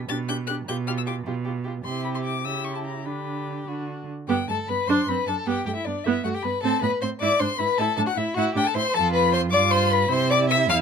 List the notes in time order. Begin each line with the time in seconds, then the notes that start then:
0.09 B2 D4 G4 A6
0.28 D4 G4 G6
0.47 D4 G4 F#6
0.67 B2 F4 G4 G6
0.87 F4 G4 F6
0.98 E6
1.06 F4 G4 D6
1.26 B2 F4 G4
1.44 F4 G4
1.64 F4 G4
1.83 C3 E4 G4 C6
2.05 B5
2.15 C6
2.24 D6
2.44 C#3 E4 G4 E6
2.64 C#6
2.75 A5
2.85 A#5
3.05 D3 D4 G4 B5
3.67 D3 D4 F#4
4.28 G2 B3 G4 G5
4.48 G2 A3 A4 A5
4.68 G2 B3 B4 B5
4.87 F#2 D4 C5 C6
5.06 F#2 C4 B4 B5
5.26 F#2 D4 A4 A5
5.45 G2 B3 G4 G5
5.65 G2 A3 G4 G5
5.75 E4 E5
5.85 G2 B3 D4 D5
6.04 G2 B3 E4 E5
6.24 G2 A3 F#4 F#5
6.34 G4 G5
6.43 G2 B3 B4 B5
6.63 A2 C4 A4 A5
6.82 A2 B3 B4 B5
7.01 A2 C4 C5 C6
7.20 G#2 E4 D5 D6
7.40 G#2 D4 C5 C6
7.58 G#2 E4 B4 B5
7.78 A2 E4 A4 A5
7.97 A2 D4 A4 A5
8.06 F#4 F#5
8.16 A2 E4 E5
8.34 A2 E4 F#4 F#5
8.54 A2 D4 G4 G5
8.64 A4 A5
8.75 A2 E4 C5 C6
8.94 F2 F4 A4 A5
9.13 B4 B5
9.33 C5 C6
9.51 G2 F4 D5 D6
9.71 C5 C6
9.90 B4 B5
10.10 C3 E4 C5 C6
10.30 D5 D6
10.50 E5 E6
10.69 E2 F5 F6